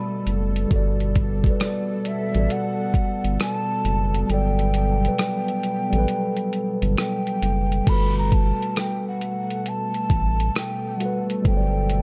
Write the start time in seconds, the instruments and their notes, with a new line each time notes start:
Already playing: analog synth pad B2 A3 A4, tine electric piano G3 F#4 A4 D5, flute B5
0.27 analog synth bass F#1, closed hi-hat
0.56 closed hi-hat
0.68 analog synth bass G1, tine electric piano G3 F#4, analog synth pad B3, kick, closed hi-hat
0.73 tine electric piano A4 D5
1.00 closed hi-hat
1.16 flute D5, kick, closed hi-hat
1.42 tine electric piano G3 F#4, kick
1.46 tine electric piano A4 B4, closed hi-hat
1.58 flute C#5, cross-stick, closed hi-hat, tambourine
1.63 flute D5
2.05 flute E5, closed hi-hat
2.32 analog synth bass A1, tine electric piano G3 F#4, closed hi-hat
2.37 tine electric piano A4 D5
2.50 flute F#5, closed hi-hat
2.94 kick, closed hi-hat
3.24 analog synth bass G1, closed hi-hat
3.40 flute A5, cross-stick, closed hi-hat, tambourine
3.85 analog synth bass F#1, closed hi-hat
4.14 closed hi-hat
4.26 analog synth bass G1, tine electric piano F#3 G3, flute A5, closed hi-hat
4.31 tine electric piano A4 D5, flute G5
4.59 closed hi-hat
4.74 closed hi-hat
5.00 tine electric piano F#3 G3
5.05 tine electric piano A4 B4, closed hi-hat
5.18 cross-stick, closed hi-hat, tambourine
5.48 closed hi-hat
5.63 closed hi-hat
5.90 analog synth bass A1, tine electric piano F#3 G3, closed hi-hat
5.96 tine electric piano A4 B4
6.08 closed hi-hat
6.37 closed hi-hat
6.53 closed hi-hat
6.82 analog synth bass G1, closed hi-hat
6.97 flute G5, cross-stick, closed hi-hat, tambourine
7.27 closed hi-hat
7.42 analog synth bass F#1, closed hi-hat
7.72 closed hi-hat
7.84 analog synth bass G1, analog synth pad B2 A3 A4, tine electric piano G3 F#4, kick, closed hi-hat, crash
7.89 tine electric piano A4 B4, flute B5
8.18 flute A#5
8.32 flute A5, kick, closed hi-hat
8.62 closed hi-hat
8.76 flute G5, cross-stick, closed hi-hat, tambourine
9.08 flute F#5
9.21 closed hi-hat
9.50 closed hi-hat
9.66 flute A5, closed hi-hat
9.94 closed hi-hat
10.10 analog synth bass A1, kick, closed hi-hat
10.40 closed hi-hat
10.55 flute G5, cross-stick, closed hi-hat, tambourine
10.87 flute F#5
10.97 tine electric piano G3 F#4, closed hi-hat
11.03 tine electric piano A4 B4
11.30 closed hi-hat
11.42 analog synth bass G1, tine electric piano F#3 G3, kick, closed hi-hat
11.47 tine electric piano A4 C5, flute G5
11.57 tine electric piano D5
11.90 closed hi-hat